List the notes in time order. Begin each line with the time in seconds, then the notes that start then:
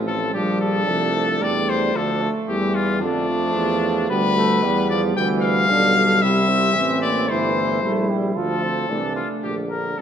Already playing: A1 F3 A3 C4
0.07 A4
0.33 A#1 F3 G3 D4 G4
0.61 A4
0.86 C2 F3 A3
1.41 E2 G3 A3 D5
1.69 C5
1.94 D2 F3 D4 A4
2.21 A3
2.48 E2 E3 G3 G4
2.75 F4
3.01 F2 D3 F3 A3 D4
3.29 F3
3.55 E2
4.10 D2 G3 B3 B4
4.38 A3
4.64 E2 G3
4.90 F3 D5
5.16 D2 E3 B3 G5
5.42 F5
5.69 B1 D3 D4
6.22 C2 C3 E4 E5
6.49 C4
6.75 A1 E3 C4
7.02 A#3 D5
7.28 G1 E3 A3 E4 C5
7.83 A#1 G3 A3 E4
8.10 G3
8.35 D2 F3 F4 A4
8.63 C4
8.89 C2 E3 A3 D4
9.15 A3 F4
9.43 A#1 D3 G4
9.70 A#4
9.97 C2 G3 C4 A4